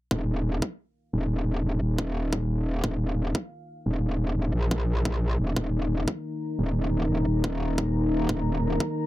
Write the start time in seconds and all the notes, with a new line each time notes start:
0.11 D#1 D#4 A#4 F5, kick
0.62 kick
1.13 D#1
1.64 D#1
1.81 D#1
1.98 kick
2.33 kick
2.84 D#1, kick
3.35 kick
3.86 D#1
4.37 D#1
4.54 A#1
4.71 kick
5.05 kick
5.39 D#1
5.56 D#1 A#5, kick
6.08 kick
6.59 D#1
7.10 D#1
7.27 D#1
7.44 kick
7.78 kick
8.29 D#1, kick
8.80 kick